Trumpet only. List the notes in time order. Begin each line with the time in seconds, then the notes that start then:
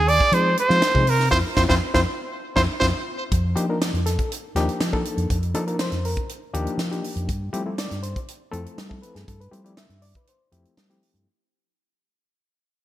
Already playing: G#4
0.09 D5
0.34 C5
0.60 C5
1.10 A#4
1.31 C5
1.56 C5
1.69 C5
1.94 C5
2.56 C5
2.80 C5